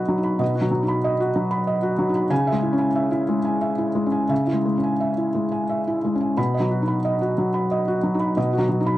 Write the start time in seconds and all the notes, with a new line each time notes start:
Already playing: B2 F#3 D#4 F#4 D#5 B5
0.08 F#3
0.18 D#4
0.24 B5
0.39 B2 D#5
0.55 F#4
0.61 F#3
0.71 F#3
0.83 D#4
0.88 B5
1.04 D#5
1.20 F#4
1.36 F#3
1.51 B5
1.67 D#5
1.83 F#4
1.99 F#3
2.09 D#4
2.15 B5
2.30 C#3 G#5
2.47 E5
2.52 G#3
2.62 E4
2.73 C#4
2.78 G#5
2.95 E5
3.11 E4
3.29 G#3
3.45 G#5
3.61 E5
3.78 E4
3.95 G#3
4.06 C#4
4.12 G#5
4.29 C#3 E5
4.47 E4
4.53 G#3
4.65 G#3
4.77 C#4
4.83 G#5
5.00 E5
5.17 E4
5.35 G#3
5.52 G#5
5.69 E5
5.87 E4
6.05 G#3
6.15 C#4
6.21 G#5
6.37 B2 B5
6.54 D#5
6.60 F#3
6.71 F#4
6.82 D#4
6.88 B5
7.05 D#5
7.21 F#4
7.38 F#3
7.54 B5
7.71 D#5
7.88 F#4
8.03 F#3
8.15 D#4
8.20 B5
8.37 B2 D#5
8.53 F#4
8.58 F#3
8.69 F#3
8.80 D#4
8.86 B5